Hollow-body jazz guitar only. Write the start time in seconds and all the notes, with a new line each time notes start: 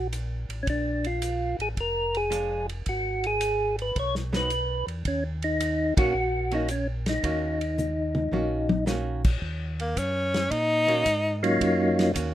2.30 F3 G#3 D4
4.33 F#3 B3 D#4
5.97 D#3 A#3 C#4 F#4
6.52 D#3 A#3 C#4 F#4
7.23 D#3 A#3 C#4 F#4
8.32 D#3 A#3 C#4 F#4
8.86 D#3 A#3 C#4 F#4
10.87 D#3 A#3 C#4 F#4
12.14 D#3 A#3 C#4 F#4